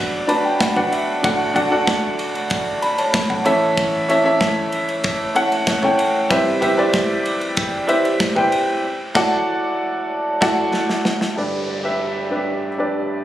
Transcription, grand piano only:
Already playing: B2 F#3 D4 F#4 B4 D5 E5 F#5
0.27 D4 F#4 B4 D5 A5 B5
0.45 G5
0.61 F#5
0.75 D4 F#4 B4 D5 F#5
0.92 E5
1.22 D2 A2 D4 F#4 A4 D5 F#5
1.54 D4 F#4 A4 D5 F#5
1.70 D4 F#4 A4 D5 F#5
2.82 D5 B5
2.98 C#5 A5
3.30 A4 F#5
3.45 A2 E3 C#4 E4 A4 C#5 E5
4.08 C#4 E4 A4 C#5 E5
4.24 C#4 E4 A4 C#5 E5
5.34 C#4 E4 A4 C#5 F#5
5.82 C#4 E4 A4 C#5 G5
6.29 C3 G3 E4 G4 B4 C5 E5
6.61 E4 G4 B4 C5 E5
6.77 E4 G4 B4 C5 D5
7.87 E4 G4 B4 C5 E5
8.35 E4 G4 B4 C5 G5
9.15 E4 F#4 A4 D5 F#5
10.41 E4 F#4 A4 D5 F#5
11.36 G2 D3 D4 G4 B4 D5
11.83 D4 G4 B4 E5
12.30 D4 G4 B4 D5
12.78 D4 G4 B4 D5

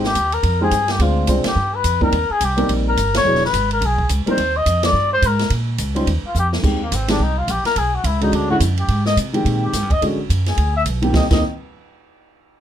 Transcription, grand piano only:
0.60 G#3 C4 D#4 G4 C5
1.00 G#3 C4 D4 F4 C5
1.27 G#3 C4 D4 F4 C5
2.01 G3 A#3 C4 D#4 A#4
2.56 G3 A#3 C4 D#4 A#4
3.25 F#3 B3 D4 E4 G#4
4.26 G3 A#3 C4 D#4 A#4
5.95 G3 C#4 D#4 F4 C5
6.62 D#3 G#3 C4 G4
7.08 D#3 G#3 C4 G4
8.21 D3 G#3 C#4 F#4
8.49 D3 G#3 C#4 E4
9.33 D#3 G#3 C4 G4
10.02 D3 G#3 C#4 F#4
11.02 D#3 A#3 C4 G4
11.13 D#3 A#3 C4 G4
11.31 D#3 A#3 C4 G4

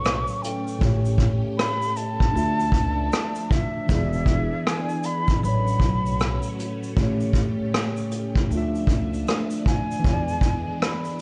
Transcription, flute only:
Already playing: C#6
0.42 G5
1.58 B5
1.97 A5
3.51 E5
4.67 G#5
5.05 B5
5.44 B5
9.67 G#5
10.83 B5

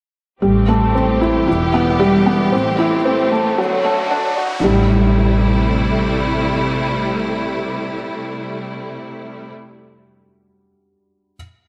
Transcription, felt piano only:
0.42 G3
0.68 A3
0.95 C4
1.21 E4
1.48 E4
1.74 B3
2.00 G3
2.26 B3
2.52 C4
2.78 E4
3.05 C4
3.31 A3
3.58 F#3
3.84 A3
4.11 D4
4.37 F#4
4.64 G3

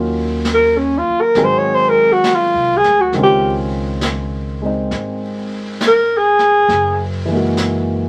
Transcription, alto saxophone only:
0.54 A#4
0.77 C#4
0.98 F4
1.21 A#4
1.44 C5
1.58 C#5
1.75 C5
1.89 A#4
2.12 F#4
2.35 F4
2.77 G#4
3.00 F#4
3.23 G4
5.87 A#4
6.17 G#4

